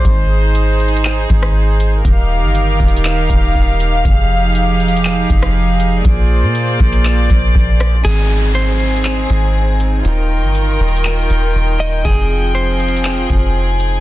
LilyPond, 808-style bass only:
\new Staff \with { instrumentName = "808-style bass" } { \clef bass \time 4/4 \key aes \lydian \tempo 4 = 120 aes,,2~ aes,,8 aes,,4. | ees,,8. g,,8. ees,,4 ees,,8 ees,,4 | f,,2~ f,,8 f,,4. | bes,,8. bes,8. bes,,4 bes,,8 bes,,4 |
aes,,2~ aes,,8 aes,,4. | ees,,8. g,,8. ees,,4 ees,,8 ees,,4 | f,,2~ f,,8 f,,4. | }